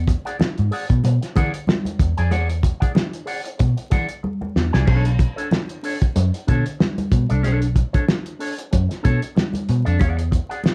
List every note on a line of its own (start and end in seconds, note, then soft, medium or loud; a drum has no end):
0.00 0.13 E2 loud
0.07 muted clean electric guitar stroke soft
0.07 kick medium
0.07 closed hi-hat medium
0.25 0.36 G#4 medium
0.25 0.36 D5 medium
0.25 0.36 F#5 medium
0.25 closed hi-hat medium
0.39 muted clean electric guitar stroke soft
0.39 muted picked electric bass stroke soft
0.39 snare loud
0.39 high conga medium
0.58 0.69 G#2 medium
0.58 closed hi-hat soft
0.71 0.84 G#4 medium
0.71 0.85 D5 medium
0.71 0.86 F#5 medium
0.71 open hi-hat medium
0.89 1.01 B2 medium
0.89 muted clean electric guitar stroke soft
0.89 kick medium
0.89 closed hi-hat soft
1.04 1.18 B2 medium
1.04 muted clean electric guitar stroke soft
1.04 closed hi-hat medium
1.04 muted conga medium
1.21 muted clean electric guitar stroke soft
1.21 snare soft
1.21 closed hi-hat medium
1.35 1.50 E3 loud
1.35 1.52 G#4 medium
1.35 1.53 D5 medium
1.35 1.52 F#5 medium
1.35 kick medium
1.35 closed hi-hat medium
1.35 muted conga medium
1.35 low conga medium
1.53 muted clean electric guitar stroke soft
1.53 closed hi-hat medium
1.67 muted clean electric guitar stroke soft
1.67 snare loud
1.67 high conga medium
1.85 muted clean electric guitar stroke soft
1.85 closed hi-hat medium
1.85 high conga medium
1.99 2.13 E2 medium
1.99 kick loud
1.99 closed hi-hat medium
2.17 2.33 F2 medium
2.17 2.29 G#4 medium
2.17 2.30 D5 medium
2.17 2.30 G#5 medium
2.17 closed hi-hat soft
2.31 2.70 E2 loud
2.31 2.48 G#4 medium
2.31 2.48 D5 medium
2.31 2.48 F#5 medium
2.31 closed hi-hat medium
2.31 muted conga medium
2.49 muted clean electric guitar stroke soft
2.49 closed hi-hat medium
2.63 muted clean electric guitar stroke soft
2.63 kick medium
2.63 closed hi-hat medium
2.80 2.92 G#4 medium
2.80 2.92 D5 medium
2.80 2.91 F#5 medium
2.80 kick medium
2.80 closed hi-hat soft
2.95 muted clean electric guitar stroke soft
2.95 snare loud
2.95 high conga medium
3.13 closed hi-hat soft
3.26 3.40 G#4 medium
3.26 3.40 D5 medium
3.26 3.41 F#5 medium
3.26 open hi-hat medium
3.44 muted clean electric guitar stroke medium
3.44 closed hi-hat medium
3.58 3.74 B2 medium
3.58 muted clean electric guitar stroke soft
3.58 kick loud
3.58 closed hi-hat medium
3.58 muted conga medium
3.77 muted clean electric guitar stroke soft
3.77 closed hi-hat soft
3.90 4.05 E3 loud
3.90 4.08 G#4 medium
3.90 4.08 D5 medium
3.90 4.07 F#5 medium
3.90 kick medium
3.90 closed hi-hat medium
3.90 muted conga soft
4.09 muted clean electric guitar stroke soft
4.09 closed hi-hat medium
4.23 muted clean electric guitar stroke soft
4.23 high conga medium
4.41 muted clean electric guitar stroke medium
4.41 high conga medium
4.56 4.70 E2 medium
4.56 snare loud
4.73 4.85 C2 medium
4.73 4.87 G#4 medium
4.73 4.87 D5 medium
4.73 4.86 G#5 medium
4.73 snare medium
4.86 5.25 B1 medium
4.86 5.08 D4 medium
4.86 5.05 A4 medium
4.86 5.04 C#5 medium
4.86 kick loud
4.86 crash medium
4.86 muted conga medium
5.05 muted clean electric guitar stroke soft
5.05 closed hi-hat medium
5.19 muted clean electric guitar stroke soft
5.19 kick loud
5.19 closed hi-hat medium
5.36 5.48 D4 medium
5.36 5.48 A4 medium
5.36 5.47 C#5 medium
5.36 closed hi-hat soft
5.51 muted clean electric guitar stroke soft
5.51 snare loud
5.51 high conga medium
5.69 closed hi-hat soft
5.83 5.96 D4 medium
5.83 5.97 A4 medium
5.83 5.98 C#5 medium
5.83 open hi-hat medium
6.02 muted clean electric guitar stroke soft
6.02 kick loud
6.02 closed hi-hat medium
6.16 6.30 F#2 medium
6.16 muted clean electric guitar stroke soft
6.16 closed hi-hat medium
6.16 muted conga medium
6.34 muted clean electric guitar stroke soft
6.34 closed hi-hat soft
6.47 6.62 B2 medium
6.47 6.64 D4 medium
6.47 6.65 A4 medium
6.47 6.65 C#5 medium
6.47 kick medium
6.47 closed hi-hat medium
6.47 muted conga soft
6.47 low conga medium
6.66 muted clean electric guitar stroke soft
6.66 closed hi-hat medium
6.79 muted clean electric guitar stroke soft
6.79 snare loud
6.79 high conga medium
6.98 muted clean electric guitar stroke soft
6.98 closed hi-hat medium
6.98 high conga medium
7.12 7.25 B2 medium
7.12 kick loud
7.12 closed hi-hat medium
7.29 7.45 C2 medium
7.29 7.42 D4 medium
7.29 7.43 A4 medium
7.29 7.43 D5 medium
7.29 closed hi-hat soft
7.43 7.82 B1 loud
7.43 7.65 D4 medium
7.43 7.61 A4 loud
7.43 7.60 C#5 medium
7.43 closed hi-hat medium
7.43 muted conga medium
7.61 muted clean electric guitar stroke soft
7.61 closed hi-hat medium
7.75 muted clean electric guitar stroke soft
7.75 kick medium
7.75 closed hi-hat medium
7.93 8.05 D4 medium
7.93 8.04 A4 medium
7.93 8.04 C#5 medium
7.93 kick medium
7.93 closed hi-hat medium
8.08 muted clean electric guitar stroke soft
8.08 snare loud
8.08 high conga medium
8.26 closed hi-hat soft
8.39 8.53 D4 medium
8.39 8.53 A4 medium
8.39 8.53 C#5 medium
8.39 open hi-hat medium
8.57 muted clean electric guitar stroke soft
8.57 closed hi-hat medium
8.71 8.87 F#2 medium
8.71 muted clean electric guitar stroke soft
8.71 kick medium
8.71 closed hi-hat medium
8.71 muted conga medium
8.89 muted clean electric guitar stroke medium
8.89 snare soft
8.89 closed hi-hat soft
9.03 9.18 B2 medium
9.03 9.20 D4 medium
9.03 9.21 A4 medium
9.03 9.20 C#5 medium
9.03 kick medium
9.03 closed hi-hat medium
9.03 muted conga medium
9.22 muted clean electric guitar stroke soft
9.22 closed hi-hat medium
9.35 muted clean electric guitar stroke soft
9.35 snare loud
9.35 high conga medium
9.53 muted clean electric guitar stroke soft
9.53 closed hi-hat medium
9.53 high conga medium
9.69 9.82 B2 medium
9.69 closed hi-hat medium
9.85 9.97 F2 medium
9.85 9.99 D4 medium
9.85 9.99 A4 medium
9.85 9.99 D5 medium
9.85 closed hi-hat soft
9.99 10.38 E2 loud
9.99 10.21 G#4 medium
9.99 10.17 D5 medium
9.99 10.16 F#5 medium
9.99 kick loud
9.99 closed hi-hat medium
9.99 muted conga medium
10.17 muted clean electric guitar stroke medium
10.17 closed hi-hat medium
10.31 muted clean electric guitar stroke soft
10.31 kick medium
10.31 closed hi-hat medium
10.49 10.61 G#4 medium
10.49 10.61 D5 medium
10.49 10.60 F#5 medium
10.49 closed hi-hat soft
10.64 muted clean electric guitar stroke soft
10.64 snare loud
10.64 high conga medium